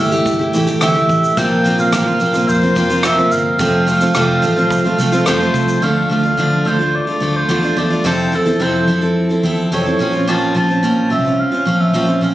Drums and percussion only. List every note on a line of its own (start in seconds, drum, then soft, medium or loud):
0.12 cross-stick soft
0.12 shaker soft
0.26 kick medium
0.26 shaker medium
0.54 shaker medium
0.68 shaker medium
0.81 cross-stick loud
0.81 shaker medium
1.09 kick medium
1.09 shaker medium
1.24 shaker medium
1.37 kick loud
1.37 shaker medium
1.65 shaker soft
1.79 shaker medium
1.93 cross-stick loud
1.93 shaker medium
2.20 shaker soft
2.34 cross-stick soft
2.34 shaker soft
2.49 shaker medium
2.76 kick medium
2.76 shaker medium
2.90 shaker medium
3.03 cross-stick loud
3.03 shaker medium
3.32 shaker medium
3.59 kick loud
3.59 shaker medium
3.87 shaker soft
4.01 shaker medium
4.15 cross-stick loud
4.15 shaker medium
4.43 shaker soft
4.70 kick medium
4.70 shaker medium
4.99 shaker medium
5.13 shaker medium
5.26 cross-stick loud
5.26 shaker medium
5.54 kick medium
5.54 shaker medium
5.68 shaker medium